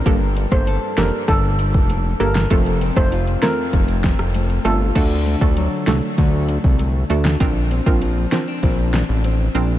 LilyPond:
<<
  \new Staff \with { instrumentName = "Steel pan" } { \time 4/4 \key d \phrygian \tempo 4 = 98 r8. c''16 r8 bes'16 r16 a'8. r8. bes'16 r16 | r8. c''16 r8 bes'16 r4. r16 a'16 r16 | r1 | r1 | }
  \new Staff \with { instrumentName = "Synth pluck" } { \time 4/4 \key d \phrygian <bes d' g' a'>16 r8 <bes d' g' a'>16 r8 <bes d' g' a'>16 r4. r16 <bes d' g' a'>8 | <a c' f' a'>16 r8 <a c' f' a'>16 r8 <a c' f' a'>16 r4. r16 <a c' f' a'>8 | <a d' fis' a'>16 r8 <a d' fis' a'>16 r8 <a d' fis' a'>16 r4. r16 <a d' fis' a'>8 | <c' d' f' bes'>16 r8 <c' d' f' bes'>16 r8 <c' d' f' bes'>16 r4. r16 <c' d' f' bes'>8 | }
  \new Staff \with { instrumentName = "Nylon-string guitar" } { \time 4/4 \key d \phrygian g,8 d'8 a'8 d'8 bes8 d'8 bes8 a'8 | f,8 c'8 f'8 c'8 a8 c'8 a8 f'8 | <d d'>8 a8 fis8 d'8 a8 d'8 a8 d'8 | d'8 c'8 f8 c'16 d'16 c'8 d'8 c'8 d'8 | }
  \new Staff \with { instrumentName = "Analog synth bass" } { \clef bass \time 4/4 \key d \phrygian g,,8. g,,8 r16 f,,16 r16 g,,8. f,,8. g,,8 | f,,8. f,,8. r8 f,,8. f,,8. g,,8 | d,8. d,8 r16 c,16 r16 d,8. c,8. d,8 | bes,,8. bes,,8. r8 bes,,8. a,,8. bes,,8 | }
  \new DrumStaff \with { instrumentName = "Drums" } \drummode { \time 4/4 <hh bd>8 hh16 bd16 hh8 <hh sn>8 <hh bd>8 hh16 bd16 hh8 hh16 sn16 | <hh bd>16 hh16 hh16 bd16 hh16 hh16 <hh sn>8 <hh bd>16 hh16 <hh bd sn>16 ss16 hh16 hh16 hh8 | <cymc hh bd>8 hh16 bd16 hh8 <hh sn>8 <hh bd>8 hh16 bd16 hh8 hh16 sn16 | <hh bd>8 hh16 bd16 hh8 <hh sn>8 <hh bd>8 <hh sn>8 hh8 hh8 | }
>>